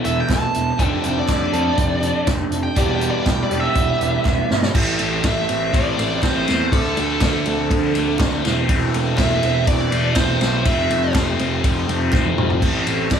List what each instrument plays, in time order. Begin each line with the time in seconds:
Already playing: clean electric guitar E2 B2 E3 A3 B3 A4, overdriven electric guitar E3 B3 E4 A4
0.05 picked electric bass E1, lead electric guitar E5, closed hi-hat
0.20 lead electric guitar G5
0.29 picked electric bass E1, lead electric guitar A5, kick, snare, clap, closed hi-hat
0.54 picked electric bass E1, closed hi-hat
0.78 picked electric bass F1, overdriven electric guitar F3 A3 D4 A4, clean electric guitar F3 C4 D4, kick, closed hi-hat
0.82 clean electric guitar A4, lead electric guitar G5
1.04 picked electric bass F1, lead electric guitar G5, closed hi-hat
1.19 lead electric guitar D5
1.28 picked electric bass F1, kick, snare, clap, closed hi-hat
1.33 lead electric guitar D5
1.53 picked electric bass F2, clean electric guitar F3 C4 D4 A4, closed hi-hat
1.78 picked electric bass F1, kick, closed hi-hat
2.03 closed hi-hat
2.27 picked electric bass F1, kick, snare, clap, closed hi-hat
2.50 picked electric bass F1, closed hi-hat
2.63 lead electric guitar G5
2.75 picked electric bass E1, clean electric guitar E2 B2 E3 G3 B3 G4, overdriven electric guitar G3 B3 E4 G4, lead electric guitar D5, kick, closed hi-hat
2.94 lead electric guitar G5
3.01 closed hi-hat
3.10 lead electric guitar D5
3.26 picked electric bass E1, lead electric guitar G5, kick, snare, clap, closed hi-hat
3.43 lead electric guitar D5
3.49 picked electric bass E1, clean electric guitar E2 B2 E3 G3 B3 G4, closed hi-hat
3.60 lead electric guitar E5
3.75 picked electric bass E1, kick, closed hi-hat
4.01 picked electric bass E1, closed hi-hat
4.25 picked electric bass E1, kick, snare, clap
4.51 picked electric bass G1, snare
4.63 snare
4.73 picked electric bass A1, clean electric guitar A2, overdriven electric guitar E3 A3 C4, kick, crash
4.99 picked electric bass A1, clean electric guitar A3, ride
5.22 picked electric bass A1, overdriven electric guitar E3 A3 C4, clean electric guitar E3, kick, snare, clap, ride
5.27 lead electric guitar E5
5.49 picked electric bass A1, clean electric guitar C4, ride
5.74 picked electric bass A1, clean electric guitar E3, lead electric guitar D5, kick, ride
5.97 picked electric bass A1, clean electric guitar A3, overdriven electric guitar A3 C4, ride
6.21 picked electric bass A1, overdriven electric guitar E3 A3 C4, clean electric guitar C4, lead electric guitar C5, kick, snare, clap, ride
6.47 picked electric bass E2, clean electric guitar E3, overdriven electric guitar A3 C4, snare, ride
6.71 picked electric bass D2, clean electric guitar D3, overdriven electric guitar F3 A3 D4, lead electric guitar A4, kick, ride
6.97 picked electric bass D2, clean electric guitar A3, ride
7.20 picked electric bass D2, clean electric guitar D3, overdriven electric guitar F3 A3 D4, kick, snare, clap, ride
7.46 picked electric bass D2, clean electric guitar C4, ride
7.71 picked electric bass D2, clean electric guitar D3, kick, ride
7.94 picked electric bass D2, overdriven electric guitar A3 D4, clean electric guitar A3, ride
8.18 picked electric bass D2, overdriven electric guitar F3 A3 D4, kick, snare, clap, ride
8.22 clean electric guitar C4
8.43 picked electric bass E1, clean electric guitar E3, overdriven electric guitar E3 A3 C4, snare, ride
8.67 picked electric bass E1, overdriven electric guitar E3 A3 C4, clean electric guitar E3, kick, ride
8.94 picked electric bass E1, clean electric guitar A3, ride
9.16 picked electric bass E1, overdriven electric guitar E3 A3 C4, clean electric guitar E3, lead electric guitar E5, kick, snare, clap, ride
9.43 picked electric bass E1, clean electric guitar C4, ride
9.67 picked electric bass E1, clean electric guitar E3, lead electric guitar D5, kick, ride
9.91 picked electric bass E1, clean electric guitar A3, overdriven electric guitar A3 C4, ride
10.14 picked electric bass E1, overdriven electric guitar E3 A3 C4, clean electric guitar C4, lead electric guitar C5, kick, snare, clap, ride
10.40 picked electric bass B1, clean electric guitar E3, overdriven electric guitar A3 C4, snare, ride
10.64 picked electric bass F1, overdriven electric guitar F3 A3 C4, clean electric guitar F3, lead electric guitar E5, kick, ride
10.90 picked electric bass F1, clean electric guitar A3, ride
11.14 picked electric bass F1, overdriven electric guitar F3 A3 C4, clean electric guitar F3, kick, snare, clap, ride
11.39 picked electric bass F1, clean electric guitar C4, ride
11.64 picked electric bass F1, clean electric guitar F3, kick, ride
11.88 picked electric bass F1, clean electric guitar A3, overdriven electric guitar A3 C4, ride
12.12 picked electric bass F1, overdriven electric guitar F3 A3 C4, clean electric guitar C4, kick, snare, clap
12.26 high tom
12.37 picked electric bass F1, clean electric guitar F3, overdriven electric guitar A3 C4, mid tom
12.50 floor tom
12.61 picked electric bass A1, clean electric guitar A2, overdriven electric guitar E3 A3 C4, kick, crash
12.87 picked electric bass A1, clean electric guitar A3, ride
13.10 picked electric bass A1, overdriven electric guitar E3 A3 C4, clean electric guitar E3, lead electric guitar E5, kick, snare, clap, ride